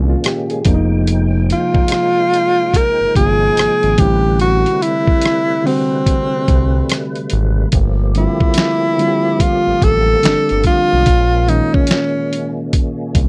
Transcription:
0.00 0.15 C2 medium
0.00 0.63 A#2 medium
0.00 0.67 D#3 medium
0.00 0.67 G#3 medium
0.00 3.95 G#3 medium
0.00 0.61 A#3 medium
0.00 0.63 C#4 medium
0.00 0.67 C#4 medium
0.00 0.10 F4 medium
0.10 0.23 F4 medium
0.24 0.49 G4 medium
0.24 cross-stick loud
0.24 closed hi-hat medium
0.50 0.90 G#4 medium
0.50 closed hi-hat soft
0.64 1.53 F1 medium
0.64 2.00 C3 medium
0.64 3.95 F3 medium
0.64 2.01 F3 medium
0.64 2.01 A#3 medium
0.64 0.75 D4 medium
0.64 3.95 D#4 medium
0.64 3.95 G5 medium
0.64 kick loud
0.64 closed hi-hat medium
0.74 2.05 D#4 loud
1.07 closed hi-hat medium
1.50 2.78 F4 loud
1.50 closed hi-hat medium
1.75 1.82 G1 soft
1.75 kick medium
1.88 cross-stick loud
1.88 closed hi-hat medium
2.34 closed hi-hat medium
2.74 3.16 A#4 loud
2.74 kick medium
2.74 closed hi-hat medium
3.01 3.07 G1 soft
3.15 3.49 G1 medium
3.15 3.47 C3 medium
3.15 3.48 F3 medium
3.15 3.48 A#3 medium
3.15 3.49 F4 medium
3.15 4.00 G#4 loud
3.15 kick medium
3.15 closed hi-hat medium
3.57 3.68 G#1 soft
3.57 cross-stick loud
3.57 closed hi-hat medium
3.83 3.95 G#1 medium
3.83 closed hi-hat soft
3.97 4.65 A1 loud
3.97 7.69 C3 medium
3.97 5.34 D3 medium
3.97 7.69 G3 medium
3.97 5.34 G3 medium
3.97 11.02 A3 medium
3.97 5.34 C4 medium
3.97 5.35 E4 medium
3.97 4.40 G4 loud
3.97 7.69 B4 medium
3.97 kick medium
3.97 closed hi-hat medium
4.40 4.84 F#4 loud
4.40 closed hi-hat medium
4.66 closed hi-hat soft
4.82 5.67 E4 loud
4.82 closed hi-hat medium
5.07 5.15 C2 soft
5.07 kick medium
5.22 cross-stick loud
5.22 closed hi-hat medium
5.64 5.97 D3 medium
5.64 5.98 G3 medium
5.64 7.32 C4 medium
5.64 5.98 C4 medium
5.64 5.98 F#4 medium
5.64 open hi-hat soft
6.06 kick medium
6.06 closed hi-hat medium
6.48 6.82 C2 medium
6.48 kick medium
6.48 closed hi-hat medium
6.89 cross-stick loud
6.89 closed hi-hat medium
7.15 closed hi-hat soft
7.30 7.65 G#1 loud
7.30 closed hi-hat medium
7.72 8.27 G1 loud
7.72 11.03 F3 medium
7.72 13.29 A#3 medium
7.72 11.04 G4 medium
7.72 kick medium
7.72 closed hi-hat medium
8.15 8.47 D3 medium
8.15 8.48 G3 medium
8.15 8.48 C4 medium
8.15 9.43 E4 loud
8.15 8.49 F4 medium
8.15 closed hi-hat medium
8.40 8.48 A1 soft
8.40 kick medium
8.54 snare loud
8.54 closed hi-hat medium
8.58 finger snap medium
8.98 10.17 D3 medium
8.98 10.18 G3 medium
8.98 10.18 C4 medium
8.98 9.08 F4 medium
8.98 closed hi-hat medium
9.08 10.22 G4 medium
9.40 9.85 F4 loud
9.40 kick medium
9.40 closed hi-hat medium
9.67 9.73 A1 soft
9.82 10.15 A1 medium
9.82 10.66 A4 loud
9.82 kick medium
9.82 closed hi-hat medium
10.23 10.35 G1 soft
10.23 11.06 D3 medium
10.23 11.07 G3 medium
10.23 11.08 C4 medium
10.23 11.08 D4 medium
10.23 finger snap medium
10.23 snare loud
10.23 closed hi-hat medium
10.49 10.63 G1 medium
10.49 closed hi-hat soft
10.64 11.50 F4 loud
10.64 kick medium
10.64 closed hi-hat medium
10.93 11.05 B1 medium
11.06 11.61 A#1 loud
11.06 13.29 A#2 medium
11.06 13.29 G#3 medium
11.06 13.29 C#4 medium
11.06 kick loud
11.06 closed hi-hat medium
11.48 12.00 D#3 medium
11.48 12.01 G#3 medium
11.48 12.01 C#4 medium
11.48 11.75 D#4 medium
11.48 12.02 F4 medium
11.48 closed hi-hat medium
11.74 11.81 C2 soft
11.74 12.57 C#4 medium
11.74 kick medium
11.87 snare loud
11.87 closed hi-hat loud
11.92 finger snap medium
12.33 closed hi-hat medium
12.73 kick medium
12.73 closed hi-hat medium
13.15 13.29 C2 medium
13.15 kick medium
13.15 closed hi-hat medium

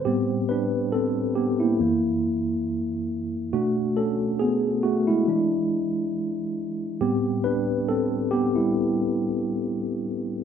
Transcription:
0.00 0.28 C5 medium
0.05 1.75 A2 soft
0.05 1.76 G3 soft
0.05 0.47 B3 medium
0.05 0.93 C4 medium
0.05 0.50 G4 medium
0.49 0.90 D4 medium
0.49 0.89 B4 medium
0.92 1.33 C4 medium
0.92 1.37 A4 medium
1.36 1.59 B3 medium
1.36 1.58 G4 medium
1.60 1.80 A#3 medium
1.60 3.05 E4 medium
1.80 3.49 F#2 soft
1.80 3.49 E3 soft
1.80 3.50 A#3 medium
3.53 4.13 B2 soft
3.53 3.94 A3 medium
3.53 4.13 D4 medium
3.53 3.93 F#4 medium
3.97 4.37 C#4 medium
3.97 4.37 A4 medium
4.39 4.81 B3 medium
4.39 4.84 G#4 medium
4.83 5.07 A3 medium
4.83 5.08 F#4 medium
5.07 5.27 G#3 medium
5.07 6.53 E4 medium
5.28 6.53 E3 medium
5.28 6.54 G#3 soft
5.28 6.54 D4 medium
7.01 8.27 A2 medium
7.01 8.27 G3 soft
7.01 7.42 B3 medium
7.01 7.89 C4 medium
7.01 7.45 G4 medium
7.44 7.85 D4 medium
7.44 7.89 B4 medium
7.89 8.29 C4 medium
7.89 8.33 A4 medium
8.31 8.55 B3 medium
8.31 8.56 G4 medium
8.55 10.02 G3 medium
8.55 10.01 E4 medium

